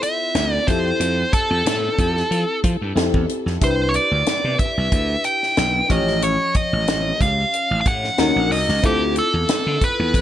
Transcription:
Already playing: fm electric piano C4 E4 F4 A4
0.03 lead electric guitar E5, closed hi-hat
0.35 slap bass D2, snare, closed hi-hat
0.54 lead electric guitar D5
0.67 slap bass F2, fm electric piano C4 E4 G4 A4, lead electric guitar C5, kick, closed hi-hat
1.00 slap bass F2, closed hi-hat
1.33 lead electric guitar A4, kick, closed hi-hat
1.50 slap bass F2
1.65 slap bass A2, snare, closed hi-hat
1.99 slap bass F2, kick, closed hi-hat
2.17 snare
2.31 slap bass F3, closed hi-hat
2.64 slap bass F3, kick, closed hi-hat
2.81 slap bass G2
2.95 slap bass F2, fm electric piano C4 E4 G4 A4, snare, closed hi-hat
3.14 slap bass E2, kick
3.29 closed hi-hat
3.46 slap bass F2, snare
3.61 slap bass C2, fm electric piano D4 E4 G4 B4, lead electric guitar C5, kick, closed hi-hat
3.89 lead electric guitar C#5
3.94 lead electric guitar D5, closed hi-hat
4.11 slap bass D2
4.26 snare, closed hi-hat
4.44 slap bass C3
4.59 lead electric guitar E5, kick, closed hi-hat
4.77 slap bass C2
4.92 slap bass D2, kick, closed hi-hat
5.24 lead electric guitar G5, closed hi-hat
5.43 snare
5.57 slap bass B1, snare, closed hi-hat
5.89 slap bass A1, fm electric piano F3 C#4 G4 C#5, lead electric guitar D#5, kick, closed hi-hat
6.08 snare
6.22 lead electric guitar C#5, closed hi-hat
6.54 lead electric guitar D#5, kick, closed hi-hat
6.73 slap bass A1
6.88 slap bass A1, snare, closed hi-hat
7.21 slap bass C#2, lead electric guitar F5, kick, closed hi-hat
7.54 closed hi-hat
7.71 slap bass A1
7.81 lead electric guitar F5
7.86 slap bass A2, lead electric guitar F#5, kick, closed hi-hat
8.04 snare
8.18 slap bass D#2, fm electric piano C#4 D#4 F#4 A#4, snare, closed hi-hat
8.36 slap bass A#1
8.51 slap bass C2, lead electric guitar D#5, open hi-hat
8.69 slap bass C#2, snare
8.82 slap bass D2, fm electric piano C4 E4 F4 A4, lead electric guitar G4, kick, closed hi-hat
9.16 lead electric guitar A4, closed hi-hat
9.34 slap bass E2
9.49 snare, closed hi-hat
9.66 slap bass D3
9.81 lead electric guitar B4, kick, closed hi-hat
9.99 slap bass E2
10.14 slap bass F2, kick, closed hi-hat

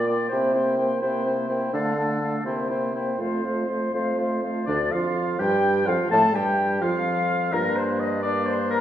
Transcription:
Already playing: bassoon A#2
0.07 french horn A#3, clarinet F4, oboe D5, flute G5
0.29 french horn A#3, clarinet E4, oboe C5, flute G5
0.33 bassoon C3
0.54 french horn A#3, clarinet E4, oboe C5, flute G5
0.77 french horn A#3, clarinet E4, oboe C5, flute G5
1.00 bassoon C3, french horn A#3, clarinet E4, oboe C5, flute G5
1.24 french horn A#3, clarinet E4, oboe C5, flute G5
1.48 french horn A#3, clarinet E4, oboe C5, flute G5
1.73 bassoon D3, french horn A3, clarinet D4, oboe A4, flute F5
1.96 french horn A3, clarinet D4, oboe A4, flute F5
2.20 french horn A3, clarinet D4, oboe A4, flute F5
2.44 bassoon C3, french horn A#3, clarinet E4, oboe C5, flute G5
2.69 french horn A#3, clarinet E4, oboe C5, flute G5
2.94 french horn A#3, clarinet E4, oboe C5, flute G5
3.18 bassoon F2, french horn A3, clarinet F4, oboe C5, flute F5
3.43 french horn A3, clarinet F4, oboe C5, flute F5
3.68 french horn A3, clarinet F4, oboe C5, flute F5
3.92 bassoon F2, french horn A3, clarinet F4, oboe C5, flute F5
4.16 french horn A3, clarinet F4, oboe C5, flute F5
4.42 french horn A3, clarinet F4, oboe C5, flute F5
4.66 bassoon D2, french horn D3, clarinet D4, oboe D5, flute D5
4.91 bassoon F2, french horn F3, clarinet F4, oboe F5, flute F5
5.39 bassoon G2, french horn G3, clarinet G4, oboe G5, flute G5
5.86 bassoon F2, french horn F3, clarinet F4, oboe F5, flute F5
6.10 bassoon A2, french horn A3, clarinet A4, flute A5, oboe A5
6.34 bassoon G2, french horn G3, clarinet G4, oboe G5, flute G5
6.81 bassoon F2, french horn F3, clarinet F4, oboe F5, flute F5
7.53 bassoon G2, french horn A#3, clarinet D4, flute A#4, oboe A#4
7.76 flute C5, oboe C5
7.99 oboe D#5, flute D#5
8.22 french horn A#3, clarinet D4, oboe D5, flute D5
8.46 oboe C5, flute C5
8.70 oboe A#4, flute A#4

